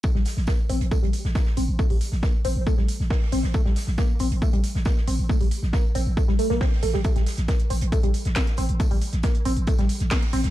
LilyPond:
<<
  \new Staff \with { instrumentName = "Synth arpeggio sound" } { \time 4/4 \key a \phrygian \tempo 4 = 137 a16 g16 r8 bes16 r16 c'16 r16 a16 g16 r8 bes16 r16 c'16 r16 | a16 g16 r8 bes16 r16 c'16 r16 a16 g16 r8 bes16 r16 c'16 r16 | a16 g16 r8 bes16 r16 c'16 r16 a16 g16 r8 bes16 r16 c'16 r16 | a16 g16 r8 bes16 r16 c'16 r16 a16 g16 a16 bes16 c'16 r16 a16 g16 |
a16 g16 r8 bes16 r16 c'16 r16 a16 g16 r8 bes16 r16 c'16 r16 | a16 g16 r8 bes16 r16 c'16 r16 a16 g16 r8 bes16 r16 c'16 r16 | }
  \new Staff \with { instrumentName = "808-style bass" } { \clef bass \time 4/4 \key a \phrygian r16 a,,16 r16 a,,16 r8 a,,16 a,,16 r16 a,,16 r16 a,,16 r8 a,,16 a,,16 | r16 a,,16 r16 a,,16 r8 a,,16 a,,16 r16 a,,16 r16 a,,16 r8 a,,16 a,,16 | r16 a,,16 r16 a,,16 r8 a,,16 a,,16 r16 a,,16 r16 a,,16 r8 a,,16 a,,16 | r16 a,,16 r16 a,,16 r8 a,,16 a,,16 r16 a,,16 r16 a,,16 r8 a,,16 a,,16 |
r16 a,,16 r16 a,,16 r8 a,,16 a,,16 r16 a,,16 r16 a,,16 r8 a,,16 a,,16 | r16 a,,16 r16 a,,16 r8 a,,16 a,,16 r16 a,,16 r16 a,,16 r8 a,,16 a,,16 | }
  \new DrumStaff \with { instrumentName = "Drums" } \drummode { \time 4/4 <bd tamb>16 sn16 <hho sn tamb>16 sn16 <bd sn tamb>8 <hho tamb>16 hh16 <bd tamb>16 hh16 <hho tamb>16 sn16 <bd sn tamb>16 sn16 <hho tamb>8 | <bd tamb>16 hho16 <hho tamb>16 sn16 <bd sn tamb>8 <hho tamb>8 <bd tamb>16 sn16 <hho tamb>16 sn16 <hho bd sn>16 sn16 <hho tamb>16 sn16 | <bd tamb>16 sn16 <hho sn tamb>16 sn16 <bd sn tamb>8 <hho tamb>16 hh16 <bd tamb>16 hh16 <hho tamb>16 sn16 <bd sn tamb>16 sn16 <hho tamb>8 | <bd tamb>16 hho16 <hho tamb>16 sn16 <bd sn tamb>8 <hho tamb>8 <bd tamb>16 sn16 <hho tamb>16 sn16 <hho bd sn>16 sn16 <hho tamb>16 sn16 |
<hh bd tamb>16 <hh sn>16 <hho sn tamb>16 <hh sn>16 <hh bd sn tamb>16 hh16 <hho tamb>16 hh16 <hh bd tamb>16 hh16 <hho tamb>16 <hh sn>16 <hh bd sn tamb>16 <hh sn>16 <hho tamb>16 hh16 | <hh bd tamb>16 hho16 <hho tamb>16 <hh sn>16 <hh bd sn tamb>16 hh16 <hho tamb>16 hh16 <hh bd tamb>16 <hh sn>16 <hho tamb>16 <hh sn>16 <hh hho bd sn>16 <hh sn>16 <hho tamb>16 <hh sn>16 | }
>>